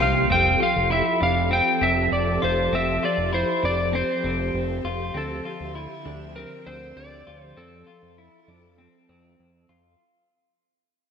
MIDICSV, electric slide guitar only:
0, 0, Header, 1, 2, 480
1, 0, Start_track
1, 0, Key_signature, -1, "major"
1, 0, Tempo, 606061
1, 238, Time_signature, 4, 2, 24, 8
1, 8793, End_track
2, 0, Start_track
2, 0, Title_t, "Electric slide guitar"
2, 0, Program_c, 0, 29
2, 17, Note_on_c, 0, 77, 80
2, 249, Note_off_c, 0, 77, 0
2, 252, Note_on_c, 0, 79, 90
2, 492, Note_off_c, 0, 79, 0
2, 498, Note_on_c, 0, 77, 86
2, 727, Note_off_c, 0, 77, 0
2, 730, Note_on_c, 0, 76, 76
2, 971, Note_off_c, 0, 76, 0
2, 974, Note_on_c, 0, 77, 90
2, 1189, Note_off_c, 0, 77, 0
2, 1211, Note_on_c, 0, 79, 91
2, 1448, Note_on_c, 0, 76, 83
2, 1451, Note_off_c, 0, 79, 0
2, 1682, Note_off_c, 0, 76, 0
2, 1685, Note_on_c, 0, 74, 79
2, 1928, Note_off_c, 0, 74, 0
2, 1934, Note_on_c, 0, 72, 66
2, 2172, Note_off_c, 0, 72, 0
2, 2176, Note_on_c, 0, 76, 81
2, 2414, Note_off_c, 0, 76, 0
2, 2414, Note_on_c, 0, 74, 74
2, 2645, Note_off_c, 0, 74, 0
2, 2648, Note_on_c, 0, 72, 71
2, 2890, Note_off_c, 0, 72, 0
2, 2892, Note_on_c, 0, 74, 77
2, 3130, Note_on_c, 0, 72, 74
2, 3131, Note_off_c, 0, 74, 0
2, 3812, Note_off_c, 0, 72, 0
2, 4096, Note_on_c, 0, 69, 74
2, 5033, Note_off_c, 0, 69, 0
2, 5036, Note_on_c, 0, 70, 89
2, 5279, Note_on_c, 0, 72, 81
2, 5284, Note_off_c, 0, 70, 0
2, 5519, Note_on_c, 0, 74, 90
2, 5525, Note_off_c, 0, 72, 0
2, 5899, Note_off_c, 0, 74, 0
2, 5899, Note_on_c, 0, 72, 90
2, 5998, Note_on_c, 0, 69, 71
2, 6012, Note_off_c, 0, 72, 0
2, 7406, Note_off_c, 0, 69, 0
2, 8793, End_track
0, 0, End_of_file